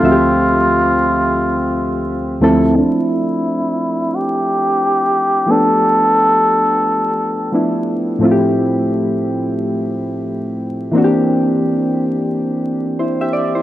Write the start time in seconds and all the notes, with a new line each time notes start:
Already playing: F4
0.02 D2 F3 A3 C4 F#4 E5
0.12 G4
2.41 D2 F3 A3 C4 E4 A4
2.73 F3 A3 C4
2.78 D4 E4
4.15 G4
5.46 F3 A3 B3
5.51 D4 G4 A4
7.52 F3 A3 B3 D4 E4
8.19 A2 F3 A3 C4
8.24 E4 F4
8.31 G4
10.91 E3 A#3 C4
10.96 D4 F#4
11.04 G4
12.99 E4 C5
13.21 G4 E5
13.33 D5
13.55 E4 C5